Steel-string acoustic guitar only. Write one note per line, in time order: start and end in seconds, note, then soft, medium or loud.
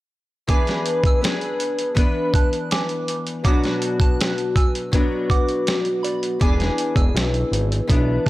0.47 1.22 E3 medium
0.47 1.21 B3 medium
0.47 1.22 D4 medium
0.47 1.22 G#4 medium
0.47 1.24 B4 medium
1.21 1.95 B3 soft
1.21 1.96 D4 medium
1.21 1.97 G#4 medium
1.21 1.98 B4 soft
1.95 3.44 E3 medium
1.95 3.45 B3 medium
1.95 3.46 D4 medium
1.95 5.49 B4 medium
3.44 4.90 B2 medium
3.44 4.92 F#3 medium
3.44 4.93 B3 medium
3.44 4.95 D4 medium
3.44 4.94 F#4 medium
4.92 6.40 B2 medium
4.92 6.39 F#3 medium
4.92 6.41 B3 medium
4.92 6.42 D4 medium
4.96 6.43 F#4 medium
6.40 7.86 E3 medium
6.40 7.88 B3 medium
6.40 7.90 D4 medium
6.40 7.90 G#4 medium
7.88 8.30 E3 medium
7.88 8.30 B3 medium
7.88 8.30 D4 medium